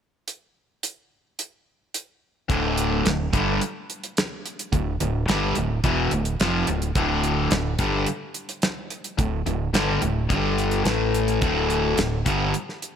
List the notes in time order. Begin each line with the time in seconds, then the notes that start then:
0.28 closed hi-hat
0.83 closed hi-hat
1.39 closed hi-hat
1.94 closed hi-hat
2.49 D1 D2 A2 D3, kick, closed hi-hat
2.78 closed hi-hat
3.05 D1 D2 A2, snare, closed hi-hat
3.33 G1 G2 D3 G3, kick, closed hi-hat
3.61 closed hi-hat
3.90 closed hi-hat
4.04 closed hi-hat
4.17 snare, closed hi-hat
4.46 closed hi-hat
4.59 closed hi-hat
4.73 D1 D2 A2, kick, closed hi-hat
5.00 D1 D2 A2, closed hi-hat
5.28 G1 G2 D3 G3, snare, closed hi-hat
5.55 D1 D2 A2, closed hi-hat
5.84 E1 E2 B2 E3, kick, closed hi-hat
6.11 D1 D2 A2, closed hi-hat
6.25 closed hi-hat
6.40 F1 F2 C3 F3, snare, closed hi-hat
6.67 D1 D2 A2, closed hi-hat
6.82 closed hi-hat
6.95 D1 D2 A2 D3, kick, closed hi-hat
7.24 closed hi-hat
7.51 D1 D2 A2, snare, closed hi-hat
7.79 G1 G2 D3 G3, kick, closed hi-hat
8.06 closed hi-hat
8.34 closed hi-hat
8.49 closed hi-hat
8.62 snare, closed hi-hat
8.90 closed hi-hat
9.04 closed hi-hat
9.18 D1 D2 A2, kick, closed hi-hat
9.46 D1 D2 A2, closed hi-hat
9.73 G1 G2 D3 G3, snare, closed hi-hat
10.02 D1 D2 A2, closed hi-hat
10.29 G1 G2 D3 G3, kick, closed hi-hat
10.58 closed hi-hat
10.71 closed hi-hat
10.85 A1 A2 E3 A3, snare, closed hi-hat
11.15 closed hi-hat
11.28 closed hi-hat
11.41 D1 D2 A2 D3, kick, closed hi-hat
11.70 closed hi-hat
11.98 D1 D2 A2, snare, closed hi-hat
12.25 G1 G2 D3 G3, kick, closed hi-hat
12.54 closed hi-hat
12.69 snare
12.82 closed hi-hat